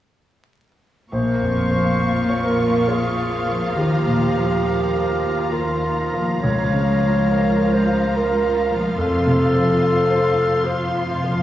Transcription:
1.12 A#1 A#2 F3 F4 C5 F5 C#6
1.34 A#3
1.42 F2
1.56 F3
1.71 F3
1.78 F4
2.00 C#4 F4
2.22 F4
2.30 C#5
2.44 A#4 F5
2.59 F4
2.65 F4
2.87 G#4 C#5
3.09 F4
3.17 F4
3.32 A#3
3.47 F3
3.54 F3
3.75 D#2 D#3 G4 A#5
3.98 D#4
4.06 A#2
4.20 F3
4.35 F3
4.43 F4
4.66 F4 A#4
4.87 F4
4.94 A#4
5.09 F5
5.23 F4
5.31 F4
5.52 F4 A#4
5.75 F4
5.82 F4
5.98 D#4
6.13 F3
6.21 F3
6.42 C#2 C#3 F3 F4 C#5 F5
6.66 C#4
6.74 C#3
6.87 F3
7.02 F3
7.09 F4
7.30 F4 A#4
7.51 F4
7.58 A#4
7.72 C5 F5
7.87 F4
7.93 F4
8.13 A#4
8.35 F4
8.42 F4
8.55 C#4
8.71 F3
8.77 F3
8.97 F2 A4 C6
9.18 C3
9.26 C3
9.39 F3
9.54 F3
9.61 F4
9.81 F4 C5
10.03 F4
10.10 C5
10.23 F5
10.38 F4
10.45 F4
10.65 F4 C5
10.89 F4
10.94 F4
11.11 C3
11.24 F3
11.33 F3

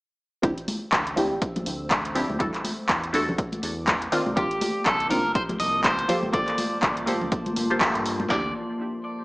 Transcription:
0.42 D2 F3 C4 D4 E4 G4 C5 E6, kick, closed hi-hat
0.58 closed hi-hat
0.68 open hi-hat, high conga
0.93 D2, kick, clap, closed hi-hat
1.07 closed hi-hat
1.16 F3 C4 D4 E4 G4, open hi-hat, high conga
1.31 A1
1.42 kick, closed hi-hat
1.56 closed hi-hat, high conga, low conga
1.66 D2, open hi-hat
1.90 kick, clap, closed hi-hat, high conga
2.05 closed hi-hat
2.15 F3 C4 D4 E4 G4, open hi-hat, low conga
2.29 D2, high conga
2.39 E2 G3 D4 E4 F#4 A4 F#5 D6, kick, closed hi-hat
2.54 clap, closed hi-hat
2.64 open hi-hat, high conga
2.89 E2, kick, clap, closed hi-hat
3.04 closed hi-hat
3.13 G3 D4 E4 F#4 A4, open hi-hat, high conga
3.28 B1, low conga
3.38 kick, closed hi-hat
3.52 closed hi-hat, high conga
3.63 E2, open hi-hat
3.88 kick, clap, closed hi-hat, high conga
4.02 closed hi-hat
4.12 D#3 A#3 C4 D4 F4, open hi-hat
4.26 C2, high conga
4.36 C2 D#3 A#3 C4 D4 F4 G4, kick, closed hi-hat
4.51 closed hi-hat
4.61 open hi-hat, high conga
4.86 C2 A4, kick, clap, closed hi-hat
5.00 closed hi-hat
5.09 D#3 A#3 C4 D4 F4 A#4, open hi-hat, high conga
5.25 G1
5.35 C5, kick, closed hi-hat
5.49 closed hi-hat, high conga, low conga
5.60 C2 D#5, open hi-hat
5.84 C5, kick, clap, closed hi-hat, high conga
5.99 closed hi-hat
6.08 A#3 F4 G4 A4 C5 A5 C6, open hi-hat, low conga
6.23 G1, high conga
6.32 G1 A#3 F4 G4 A4 C5 D5, kick, closed hi-hat
6.48 clap, closed hi-hat
6.58 open hi-hat, high conga
6.83 G1, kick, clap, closed hi-hat
6.97 closed hi-hat
7.06 A#3 F4 G4 A4 C5, open hi-hat, high conga
7.21 D2, low conga
7.32 kick, closed hi-hat
7.46 closed hi-hat, high conga
7.56 G1, open hi-hat
7.70 A#3 F4 G4 A4 C5, closed hi-hat
7.81 A#3 F4 G4 A4 E5, kick, clap, closed hi-hat, high conga
7.95 G2, closed hi-hat
8.06 open hi-hat
8.20 high conga
8.29 D2 F3 C4 D4 E4 G4 D5, kick, snare, clap

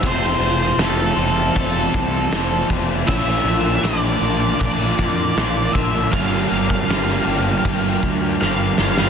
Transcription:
Already playing: F4 C5 A5
0.02 F1 F2 C3 F3 A3 C4 F4 D6, kick, open hi-hat
0.06 C5
0.40 F1 F3 A3 C4 F4
0.78 F1 F3 A3 C4 F4 A4, snare, open hi-hat
1.15 F1 F3 A3 C4 F4
1.54 F1 F2 C3 F3 A3 C4 F4, kick, open hi-hat
1.93 C2 F3 A3 C4 F4, kick
2.31 F1 F3 A3 C4 F4, snare, open hi-hat
2.69 F1 F3 A3 C4 F4, kick
3.06 A#1 A#2 D3 F3 A#3 D4 F4 A#4 E5, kick, open hi-hat
3.10 F4
3.44 A#1 A#3 D4 F4
3.83 A#1 D3 A#3 D4 F4 D5, snare, open hi-hat
4.21 A#1 A#3 D4 F4
4.60 A#1 A#2 D3 A#3 D4 F4 D5, kick, open hi-hat
4.98 F2 A#3 D4 F4, kick
5.35 A#1 D3 A#3 D4 F4, snare, open hi-hat
5.73 A#1 A#3 D4 F4 E5, kick
6.11 G1 G2 D3 G3 A#3 D4 G4 A#4 F5 G5, kick, open hi-hat
6.49 G1 G3 A#3 D4 G4
6.70 kick
6.87 G1 G3 A#3 D4 G4, snare, open hi-hat
7.08 snare
7.26 G1 G3 A#3 D4 G4
7.64 G1 G2 D3 G3 A#3 D4 G4, kick, open hi-hat
8.03 D2 G3 A#3 D4 G4, kick
8.41 G1 G3 A#3 D4 G4 F5, snare
8.78 G1 G3 A#3 D4 G4, snare
8.98 snare

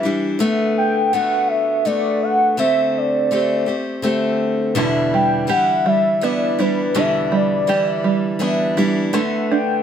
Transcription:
0.03 E3 G3 D4 E4
0.39 D3 A3 B3
0.78 G5
1.13 D3 A3 B3 F#4 F#5
1.48 E5
1.85 D3 A3 B3 F#4 D5
2.23 F#5
2.57 D3 A3 C4 G4 E5
2.98 D5
3.31 D3 A3 C4 G4
3.66 A3 C4 G4
4.02 D3 A3 C4 G4
4.75 E2 B2 D3 E3 G3 D4 E4
5.14 G3 G5
5.47 E3 G3 D4 E4 G4 F#5
5.86 G3 E5
6.21 E3 G3 B3 D4 E4 D5
6.58 E3 G3 D4 E4 B4
6.94 E2 B2 D3 E3 G3 D4 E4 E5
7.32 G3 D5
7.67 E3 G3 D4 E4 G4
8.04 G3
8.39 E3 G3 B3 D4 E4
8.77 E3 G3 D4 E4
9.13 D3 A3 B3
9.51 D4 G5

